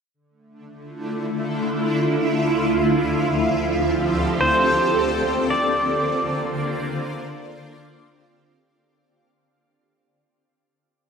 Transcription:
0.14 D3
0.29 A3
0.58 E4
0.63 F4
2.28 D2
2.63 F3
3.24 C4 G4 A4
4.41 D3 C5
4.61 A#3
5.36 F4 C5 D5
5.50 D5

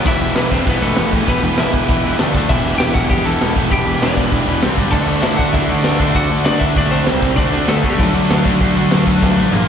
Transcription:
0.05 E1 E2 B2 E3 B3 E4 G4 B4 E5, kick, crash
0.21 E1 E2 B2 E3 B3 E4 G4 B4
0.35 E1 E2 B2 E3 B3 E4 G4 B4, snare, open hi-hat
0.50 E1 E2 B2 E3 B3 C4 E4 G4 B4 C5, kick
0.66 E1 E2 B2 E3 B3 E4 G4 B4, kick, open hi-hat
0.81 E1 E2 B2 E3 A3 B3 E4 G4 A4 B4
0.96 E1 E2 B2 E3 B3 E4 G4 B4, snare, open hi-hat
1.13 E1 E2 B2 E3 B3 E4 G4 B4, kick
1.27 E1 E2 B2 E3 B3 E4 G4 B4, kick, open hi-hat
1.43 E1 E2 B2 E3 B3 E4 G4 B4
1.57 E1 E2 B2 E3 E4 E5, snare, open hi-hat
1.62 B3 E4 G4 B4
1.73 E1 E2 B2 E3 B3 E4 G4 B4, kick
1.78 E3
1.88 E1 E2 B2 E3 B3, kick, open hi-hat
1.92 E4 G4 B4
2.03 E1 E2 B2 E3 B3 E4 G4 B4
2.07 E3
2.19 D2 D3 A3 D4 A4, snare, open hi-hat
2.35 D2 D3 A3 D4 A4, kick
2.49 E1 E2 B2 E3 B3 E4 G4 E5, kick, open hi-hat
2.65 E1 E2 B2 E3 B3 E4 G4
2.78 E1 E2 B2 E3 B3 E4 G4 G5, snare, open hi-hat
2.94 E1 E2 B2 E3 B3 E4 F#4 G4 F#5, kick
3.10 E1 E2 B2 E3 B3 E4 G4 G5, kick, open hi-hat
3.24 E1 E2 B2 E3 B3 E4 G4 A4 A5
3.28 E3
3.41 E1 E2 B2 E3 B3 E4 G4, snare, open hi-hat
3.56 E1 E2 B2 E3 B3 E4 G4, kick
3.70 E1 E2 B2 E3 B3 G4 G5, kick, open hi-hat
3.74 E4 G4
3.85 E1 E2 B2 E3 B3 E4 G4
3.89 E3
4.00 E1 E2 B2 E3 B3 D4 E4 G4, snare, open hi-hat
4.05 D5
4.17 E1 E2 B2 E3 B3 E4 G4, kick
4.32 E1 E2 B2 E3 B3 E4 G4, kick, open hi-hat
4.46 E1 E2 B2 E3 B3 E4 G4
4.62 C2 C3 G3 C4 G4, snare, open hi-hat
4.77 G1 G2 D3 G3 D4 G4 D5, kick
4.92 D2 D3 A3 D4 F#4 A4 A5, kick, crash
5.08 D2 D3 A3 D4 F#4
5.22 D2 D3 A3 D4 E4 F#4 E5, snare, open hi-hat
5.37 D2 D3 A3 D4 F#4 F#5, kick
5.53 D2 D3 A3 D4 E4 F#4 E5, kick, open hi-hat
5.69 D2 D3 A3 D4 F#4 D5
5.84 D2 D3 A3 D4 F#4, snare, open hi-hat
6.00 D2 D3 A3 D4 F#4, kick
6.14 D2 D3 A3 D4 F#4 F#5, kick, open hi-hat
6.30 D2 D3 A3 D4 F#4
6.44 D2 D3 A3 D4 F#4 D5, snare, open hi-hat
6.59 D2 D3 A3 D4 E4 F#4 E5, kick
6.76 D2 D3 A3 D4 F#4 D5, kick, open hi-hat
6.91 D2 D3 A3 C4 D4 F#4 C5
7.07 C2 C3 G3 C4 G4, snare, open hi-hat
7.22 C2 C3 G3 C4 G4, kick
7.36 D2 D3 A3 D4 F#4 D5, kick, open hi-hat
7.53 D2 D3 A3 D4 F#4
7.68 D2 D3 A3 D4 F#4 A4, snare, open hi-hat
7.83 D2 D3 A3 B3 D4 F#4 B4, kick
7.90 G3 G4
7.98 D2 D3 F#3 A3 D4 F#4, kick, open hi-hat
8.14 D2 D3 A3 D4 F#4
8.28 D2 D3 A3 D4 F#4, snare, open hi-hat
8.45 D2 D3 A3 D4 F#4, kick
8.60 D2 D3 A3 D4 F#4, kick, open hi-hat
8.76 D2 D3 A3 D4 F#4
8.91 D2 D3 A3 D4 F#4, snare, open hi-hat
9.07 D2 D3 A3 D4 F#4, kick
9.22 D2 D3 A3 D4 F#4, kick, snare
9.38 A1 D3 A3 D4 F#4
9.52 A#1 A#2 F3 A#3 F4, mid tom

